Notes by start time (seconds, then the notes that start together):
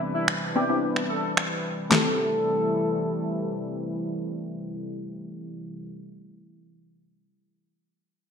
Already playing: C3 E3 G3 B3 C4 D4 E4 B4
0.15 E4
0.28 finger snap
0.55 B3 C4 D4 E4 G4
0.69 B3 C4 D4 E4
0.96 finger snap
1.10 A4
1.37 finger snap
1.90 C3 E3 G3 A3 C4 E4 G4 A4, snare, clap